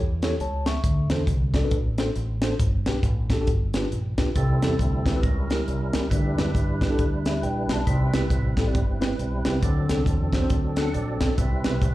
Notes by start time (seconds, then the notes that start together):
Already playing: E2
0.22 E4 G4 A4 C#5, snare, closed hi-hat
0.40 C#2 C#5 A5, closed hi-hat
0.66 E5 C#6, snare, closed hi-hat
0.84 D2 D3, kick, closed hi-hat
1.10 E2 D4 F#4 A4 C5, snare, closed hi-hat
1.27 C2, kick, closed hi-hat
1.54 D4 F#4 A4 D5, kick, snare, closed hi-hat
1.64 D4 F#4 A4 B4
1.71 A1, kick, closed hi-hat
1.98 D4 F#4 A4 C5, snare, closed hi-hat
2.16 A1, closed hi-hat
2.42 D4 F#4 A4 C5, snare, closed hi-hat
2.59 G1 G2, kick, closed hi-hat
2.86 B1 D4 F#4 G4 B4, snare, closed hi-hat
3.03 A1, kick, closed hi-hat
3.30 D4 F#4 G4 A4, kick, snare, closed hi-hat
3.41 D4 F#4 G4 A4
3.47 G1 G2, kick, closed hi-hat
3.74 D4 F4 G4 B4, snare, closed hi-hat
3.92 A#1, closed hi-hat
4.18 B1 D4 F4 G4 B4, kick, snare, closed hi-hat
4.35 C2 C3 G3 C4 E4 A4, kick, closed hi-hat
4.62 E2 C4 E4 G4 A4, snare, closed hi-hat
4.79 D2, kick, closed hi-hat
5.06 C4 E4 G4 B4, kick, snare, closed hi-hat
5.16 C4 E4 G4 B4
5.22 C#2 C#3 G3 C#4 E4 A#4, kick, closed hi-hat
5.50 C#4 E4 G4 A#4, snare, closed hi-hat
5.68 C2, closed hi-hat
5.93 C#2 C#4 E4 G4 A#4, snare, closed hi-hat
6.10 D2 D3 G3 D4 E4 B4, kick, closed hi-hat
6.38 F#2 D4 E4 G4 B4, snare, closed hi-hat
6.55 G2, kick, closed hi-hat
6.81 D4 E4 G4 B4, kick, snare, closed hi-hat
6.90 D4 E4 G4 A4
6.99 D2, kick, closed hi-hat
7.25 G4 E5, snare, closed hi-hat
7.43 A#1 B4 G5, closed hi-hat
7.69 B1 F#4 D5 A5, snare, closed hi-hat
7.87 C2 C3 G3 C4 D#4 B4, kick, closed hi-hat
7.92 E4
8.14 B1 C4 E4 G4 B4, snare, closed hi-hat
8.30 A1, kick, closed hi-hat
8.57 C4 E4 G4 A4, kick, snare, closed hi-hat
8.67 C4 E4 G4 D5
8.75 G1, kick, closed hi-hat
9.01 C4 E4 G4 B4, snare, closed hi-hat
9.19 B1, closed hi-hat
9.45 C2 C4 E4 G4 B4, snare, closed hi-hat
9.62 D2 D3 F#3 C4 D4 A4, kick, closed hi-hat
9.89 C2 C4 D4 F#4 A4, snare, closed hi-hat
10.06 E2, kick, closed hi-hat
10.33 C4 D4 F#4 C5, kick, snare, closed hi-hat
10.41 C4 D4 F#4 C5
10.50 D2, kick, closed hi-hat
10.76 C4 D4 F#4 A4 F#5, snare, closed hi-hat
10.93 A#1 D5, closed hi-hat
11.21 B1 C4 D4 F#4 A4, kick, snare, closed hi-hat
11.37 C2 C3 G3 C4 E4 B4, kick, closed hi-hat
11.64 B1 C4 E4 G4 B4, snare, closed hi-hat
11.82 A1, kick, closed hi-hat